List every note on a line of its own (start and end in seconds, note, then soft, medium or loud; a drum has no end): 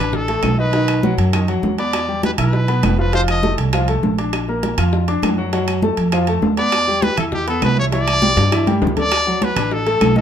0.00 0.40 A1 medium
0.00 0.23 D4 medium
0.00 0.17 B4 medium
0.00 0.23 D5 medium
0.00 0.23 D6 medium
0.13 0.59 A4 medium
0.13 high bongo medium
0.13 high conga soft
0.13 low conga medium
0.28 0.53 A3 medium
0.28 0.53 A4 medium
0.28 0.53 A5 medium
0.28 high bongo soft
0.28 high conga soft
0.28 high timbale medium
0.43 1.13 B1 medium
0.43 high bongo soft
0.43 low bongo medium
0.43 high conga medium
0.43 high timbale medium
0.43 low timbale medium
0.43 claves medium
0.58 0.70 D#3 medium
0.58 0.71 D#4 medium
0.58 1.15 B4 medium
0.58 0.71 D#5 medium
0.58 high bongo soft
0.58 high conga soft
0.73 0.98 D#3 medium
0.73 0.98 D#4 medium
0.73 0.98 D#5 medium
0.73 high bongo medium
0.73 high conga soft
0.73 high timbale medium
0.88 high bongo soft
0.88 high conga soft
0.88 high timbale loud
0.88 claves medium
1.03 1.28 F#3 medium
1.03 1.28 F#4 medium
1.03 1.29 F#5 medium
1.03 high bongo medium
1.03 high conga medium
1.18 1.60 F#2 medium
1.18 high timbale medium
1.33 1.46 D#3 medium
1.33 1.46 D#4 medium
1.33 1.46 D#5 medium
1.33 high bongo medium
1.33 high conga soft
1.33 high timbale medium
1.33 claves medium
1.48 1.73 F#3 medium
1.48 1.73 F#4 medium
1.48 1.73 F#5 medium
1.48 high bongo soft
1.48 high conga soft
1.48 high timbale medium
1.62 2.32 E2 medium
1.62 high bongo soft
1.62 low bongo medium
1.62 high conga medium
1.78 2.03 B3 medium
1.78 2.03 B4 medium
1.78 2.20 D5 medium
1.78 2.03 B5 medium
1.78 high bongo soft
1.78 high timbale medium
1.93 high bongo medium
1.93 high conga soft
1.93 high timbale medium
1.93 claves medium
2.08 2.33 G3 medium
2.08 2.33 G4 medium
2.08 2.33 G5 medium
2.08 high bongo soft
2.08 high conga soft
2.23 2.31 B4 medium
2.23 high bongo medium
2.23 high conga medium
2.23 high timbale medium
2.38 2.80 B1 medium
2.38 2.63 E4 medium
2.38 2.95 B4 medium
2.38 2.63 E5 medium
2.38 2.63 E6 medium
2.38 high conga soft
2.38 low conga medium
2.38 high timbale medium
2.38 claves medium
2.53 high bongo medium
2.53 high conga soft
2.68 2.93 B3 medium
2.68 2.93 B4 medium
2.68 2.93 B5 medium
2.68 high bongo soft
2.68 high conga soft
2.68 high timbale medium
2.83 3.52 F1 medium
2.83 high bongo soft
2.83 low bongo medium
2.83 high conga medium
2.83 high timbale medium
2.83 low timbale medium
2.83 claves medium
2.98 3.11 F3 medium
2.98 3.11 F4 medium
2.98 3.13 B4 medium
2.98 3.11 F5 medium
2.98 high bongo soft
2.98 high conga soft
3.13 3.38 F3 medium
3.13 3.38 F4 medium
3.13 3.21 C5 loud
3.13 3.38 F5 medium
3.13 high bongo medium
3.13 high conga soft
3.13 high timbale medium
3.28 3.57 D#5 medium
3.28 high bongo soft
3.28 high conga soft
3.28 high timbale medium
3.28 claves medium
3.43 3.68 A3 medium
3.43 3.68 A4 medium
3.43 3.68 A5 medium
3.43 high bongo medium
3.43 high conga medium
3.58 4.00 C2 loud
3.58 high conga soft
3.58 high timbale medium
3.73 3.86 F3 medium
3.73 3.86 F4 medium
3.73 3.86 F5 medium
3.73 high bongo medium
3.73 high conga soft
3.73 high timbale medium
3.73 claves medium
3.88 4.13 A3 medium
3.88 4.13 A4 medium
3.88 4.13 A5 medium
3.88 high bongo soft
3.88 high conga soft
3.88 high timbale medium
4.03 4.72 A#1 medium
4.03 high bongo soft
4.03 low bongo medium
4.03 high conga medium
4.18 4.43 D4 medium
4.18 4.43 D5 medium
4.18 4.43 D6 medium
4.18 high bongo soft
4.18 high timbale medium
4.33 high bongo medium
4.33 high conga soft
4.33 high timbale medium
4.33 claves medium
4.48 4.73 A#3 medium
4.48 4.73 A#4 medium
4.48 4.73 A#5 medium
4.48 high bongo soft
4.48 high conga soft
4.63 high bongo medium
4.63 high conga medium
4.63 high timbale medium
4.78 5.20 F2 medium
4.78 5.03 F4 medium
4.78 5.03 F5 medium
4.78 5.03 F6 medium
4.78 high conga soft
4.78 low conga medium
4.78 high timbale loud
4.78 claves medium
4.93 high bongo medium
4.93 high conga soft
5.08 5.32 D4 medium
5.08 5.33 D5 medium
5.08 5.33 D6 medium
5.08 high bongo soft
5.08 high conga soft
5.08 high timbale medium
5.22 5.92 F#2 medium
5.22 high bongo soft
5.22 low bongo medium
5.22 high conga medium
5.22 high timbale medium
5.22 low timbale medium
5.22 claves medium
5.38 5.50 F#3 medium
5.38 5.50 F#4 medium
5.38 5.50 F#5 medium
5.38 high bongo soft
5.38 high conga soft
5.53 5.77 F#3 medium
5.53 5.78 F#4 medium
5.53 5.78 F#5 medium
5.53 high bongo medium
5.53 high conga soft
5.53 high timbale medium
5.68 high bongo soft
5.68 high conga soft
5.68 high timbale medium
5.68 claves medium
5.82 6.07 A3 medium
5.82 6.07 A4 medium
5.82 6.08 A5 medium
5.82 high bongo medium
5.82 high conga medium
5.97 6.39 F2 loud
5.97 high conga soft
5.97 high timbale medium
6.12 6.25 F3 medium
6.12 6.25 F4 medium
6.12 6.25 F5 medium
6.12 high bongo medium
6.12 high conga soft
6.12 high timbale medium
6.12 claves medium
6.27 6.52 A3 medium
6.27 6.53 A4 medium
6.27 6.53 A5 medium
6.27 high bongo soft
6.27 high conga soft
6.27 high timbale medium
6.42 7.12 E2 medium
6.42 high bongo soft
6.42 low bongo medium
6.42 high conga medium
6.57 6.82 B3 medium
6.57 6.82 B4 medium
6.57 7.05 D5 loud
6.57 6.83 B5 medium
6.57 high bongo soft
6.57 high timbale medium
6.72 high bongo medium
6.72 high conga soft
6.72 high timbale medium
6.72 claves medium
6.87 7.12 G3 medium
6.87 7.12 G4 medium
6.87 7.12 G5 medium
6.87 high bongo soft
6.87 high conga soft
7.02 7.18 B4 loud
7.02 high bongo medium
7.02 high conga medium
7.02 high timbale medium
7.17 7.59 E2 medium
7.17 7.42 E4 medium
7.17 7.25 A4 medium
7.17 7.42 E5 medium
7.17 7.42 E6 medium
7.17 high conga soft
7.17 low conga medium
7.17 high timbale medium
7.17 claves medium
7.32 7.47 G4 medium
7.32 high bongo medium
7.32 high conga soft
7.32 low conga medium
7.47 7.72 B3 medium
7.47 7.62 A4 medium
7.47 7.72 B4 medium
7.47 7.72 B5 medium
7.47 high bongo soft
7.47 high conga soft
7.47 high timbale medium
7.62 8.31 C2 medium
7.62 7.77 B4 medium
7.62 high bongo soft
7.62 low bongo medium
7.62 high conga medium
7.62 high timbale medium
7.62 low timbale medium
7.62 claves medium
7.77 7.89 E3 medium
7.77 7.90 E4 medium
7.77 7.85 C#5 loud
7.77 7.90 E5 medium
7.77 high bongo soft
7.77 high conga soft
7.92 8.17 E3 medium
7.92 8.17 E4 medium
7.92 8.79 D5 loud
7.92 8.17 E5 medium
7.92 high bongo medium
7.92 high conga soft
7.92 high timbale medium
8.07 high bongo soft
8.07 high conga soft
8.07 high timbale medium
8.07 claves medium
8.22 8.46 G3 medium
8.22 8.47 G4 medium
8.22 8.47 G5 medium
8.22 high bongo medium
8.22 high conga medium
8.37 8.78 G2 loud
8.37 high bongo medium
8.37 high conga soft
8.37 high timbale medium
8.51 8.64 E3 medium
8.51 8.64 E4 medium
8.51 8.64 E5 medium
8.51 high bongo medium
8.51 high conga soft
8.51 high timbale medium
8.51 claves medium
8.67 8.91 G3 medium
8.67 8.92 G4 medium
8.67 8.92 G5 medium
8.67 low bongo medium
8.67 high conga medium
8.67 high timbale medium
8.81 9.51 D2 medium
8.81 low bongo loud
8.81 low timbale medium
8.87 low conga loud
8.97 9.09 A3 medium
8.97 9.09 A4 medium
8.97 9.45 D5 loud
8.97 9.09 A5 medium
8.97 low bongo medium
8.97 low conga medium
8.97 high timbale medium
9.12 high bongo medium
9.12 high conga soft
9.12 high timbale loud
9.12 claves medium
9.27 9.51 F#3 medium
9.27 9.51 F#4 medium
9.27 9.51 F#5 medium
9.27 high bongo soft
9.27 high conga soft
9.42 9.74 B4 medium
9.42 high bongo medium
9.42 high conga medium
9.42 high timbale medium
9.56 9.98 A1 medium
9.56 9.81 D4 medium
9.56 9.81 D5 medium
9.56 9.82 D6 medium
9.56 high bongo soft
9.56 high conga soft
9.56 low conga medium
9.56 high timbale loud
9.56 claves medium
9.71 10.17 A4 medium
9.71 high bongo medium
9.71 high conga soft
9.86 10.11 A3 medium
9.86 10.11 A4 medium
9.86 10.11 A5 medium
9.86 high bongo soft
9.86 high conga soft
9.86 high timbale medium
10.01 10.21 B1 medium
10.01 high bongo soft
10.01 low bongo medium
10.01 high conga medium
10.01 high timbale medium
10.01 low timbale medium
10.01 claves medium
10.16 10.21 D#3 medium
10.16 10.21 D#4 medium
10.16 10.21 A4 medium
10.16 10.21 D#5 medium
10.16 high conga medium